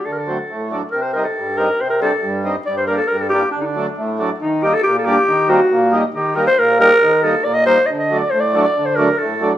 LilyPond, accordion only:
\new Staff \with { instrumentName = "Accordion" } { \clef bass \time 2/4 \tempo 4 = 138 << { r8 <fis a c'>16 r8. <fis a d'>16 r16 | r8 <g c' ees'>16 r8. <g c' ees'>16 r16 | r8 <g c' d'>16 r8. <g c' ees'>16 r16 | r8 <g bes d'>16 r8. <g bes d'>16 r16 |
r8 <fis a d'>16 r8. <fis a d'>16 r16 | r8 <g bes ees'>16 r8. <g bes d'>16 r16 | r8 <g bes c'>16 r8. <g bes ees'>16 r16 | r8 <g bes ees'>16 r8. <g bes ees'>16 r16 |
r8 <g bes ees'>16 r8. <g bes ees'>16 r16 | r8 <fis a d'>16 r8. <fis a d'>16 r16 | r8 <fis a d'>16 r8. <fis a d'>16 r16 | } \\ { d4 a,4 | c4 g,4 | c4 g,4 | g,4 g,4 |
d4 a,4 | ees4 bes,4 | ees4 bes,4 | ees4 bes,4 |
ees4 bes,4 | d4 a,4 | d4 a,4 | } >> }